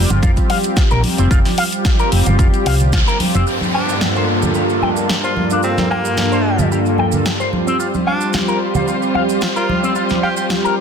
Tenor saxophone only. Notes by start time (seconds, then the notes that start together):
3.74 D4
5.23 F4
5.63 C4
5.90 A#3
8.06 D4
9.56 F4
10.23 G4
10.37 G4